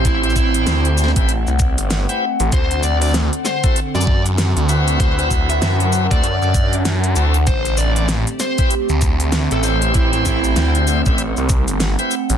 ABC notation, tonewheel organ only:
X:1
M:4/4
L:1/16
Q:"Swing 16ths" 1/4=97
K:Ador
V:1 name="Tonewheel organ"
[CEGc]6- [CEGc] [CEGB] z4 z [CEGB] z2 | z6 z [CEFA] z6 [CEFB]2- | [CEFB]6- [CEFB] [CEFA] z6 [CEFA] z | z6 z [CEGB] z6 [CEGc]2- |
[CEGc]6- [CEGc] [CEGB] z4 z [CEGB] z2 |]